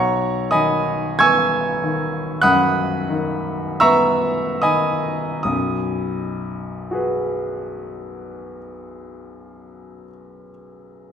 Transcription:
Already playing: B1 C#5 F#5 A#5 C#6
0.51 D#3 D#5 G#5 B5 D#6
1.19 B3 G#5 C#6 E6 G#6
1.83 D#3
2.42 F#2 F#5 B5 D#6 F#6
3.09 D#3
3.80 B3 E5 A#5 C#6 E6
4.62 D#3 D#5 G#5 B5 D#6
5.43 B1 F#2 D#6
6.91 F#4 G#4 B4

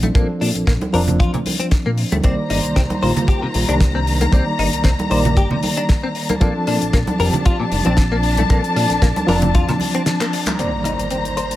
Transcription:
Already playing: A#1 F3 C4 D4
0.03 A3, closed hi-hat, high conga
0.14 A#1 F3 A#3 C4 D4 A4, kick, closed hi-hat
0.41 A#2 D4, open hi-hat
0.55 A#1, closed hi-hat
0.67 A#1 A#3, kick, snare, closed hi-hat
0.81 closed hi-hat, high conga
0.93 F1 F3 C4 D4 A#4, open hi-hat
1.08 closed hi-hat, low conga
1.20 F2 F4, kick, closed hi-hat
1.34 A#2, closed hi-hat, low conga
1.46 open hi-hat, high conga
1.60 C4, closed hi-hat
1.71 kick, snare, closed hi-hat
1.86 A#2 A#3
1.98 open hi-hat
2.12 D2 A3, closed hi-hat, high conga
2.23 C2 D#3 G3 A#3 C4 C5 D5 A#5, kick, closed hi-hat
2.50 G1 D#4, cross-stick, open hi-hat
2.65 C2, closed hi-hat
2.76 C2 C4, kick, snare, closed hi-hat
2.90 closed hi-hat, high conga
3.02 A#1 D#3 G3 A#3 F4 C5, open hi-hat
3.16 closed hi-hat, low conga
3.28 G4, kick, closed hi-hat
3.42 C3
3.54 A#1, open hi-hat, high conga
3.68 C2 D#3 G3 A#3 D4, closed hi-hat
3.80 kick, snare, closed hi-hat
3.95 C4
4.07 open hi-hat
4.21 A#3, closed hi-hat, high conga
4.32 C2 D#3 G3 A#3 C4 D5, kick, closed hi-hat
4.59 G1 D#4, cross-stick, open hi-hat
4.73 C2, closed hi-hat
4.84 C2 C4, kick, snare, closed hi-hat
4.99 closed hi-hat, high conga
5.10 A#1 D#3 G3 A#3 C5 D5, open hi-hat
5.25 closed hi-hat, low conga
5.37 G1 G4, kick, closed hi-hat
5.51 C3, low conga
5.63 open hi-hat, high conga
5.77 D4, closed hi-hat
5.89 kick, snare, closed hi-hat
6.03 C4
6.15 open hi-hat
6.29 A#3, closed hi-hat, high conga
6.40 A#1 F3 A#3 C4 D4 A4 A5, kick, closed hi-hat
6.67 A#2 D4, cross-stick, open hi-hat
6.82 A#1, closed hi-hat
6.93 A#1 A#3, kick, snare, closed hi-hat
7.07 closed hi-hat, high conga
7.19 F1 F3 C4 G4 A#4, open hi-hat
7.33 closed hi-hat, low conga
7.45 F4, kick, closed hi-hat
7.60 A#2
7.72 F1, open hi-hat, high conga
7.85 A#1 F3 C4 D4, closed hi-hat
7.97 kick, snare, closed hi-hat
8.12 A#3
8.23 open hi-hat
8.37 A3, closed hi-hat, high conga
8.49 A#1 F3 A#3 C4 D4 A4, kick, closed hi-hat
8.64 closed hi-hat
8.76 A#2 D4, cross-stick, open hi-hat
8.89 A#1, snare, closed hi-hat
9.02 A#1 A#3, kick, snare, closed hi-hat
9.16 closed hi-hat, high conga
9.27 F1 F3 C4 D4 A#4, open hi-hat
9.42 closed hi-hat, low conga
9.55 F2 F4, kick, closed hi-hat
9.68 A#2, cross-stick, closed hi-hat, low conga
9.80 open hi-hat, high conga
9.94 C4, closed hi-hat
10.06 snare, closed hi-hat
10.21 A#3, clap, closed hi-hat
10.33 open hi-hat
10.46 A3, clap, closed hi-hat, high conga
10.58 C2 D#3 G3 A#3 C4 C5 D5 A#5, closed hi-hat, impact
10.84 D#4, cross-stick, closed hi-hat
10.99 closed hi-hat
11.10 C4, closed hi-hat
11.25 closed hi-hat
11.37 C5, closed hi-hat
11.51 closed hi-hat

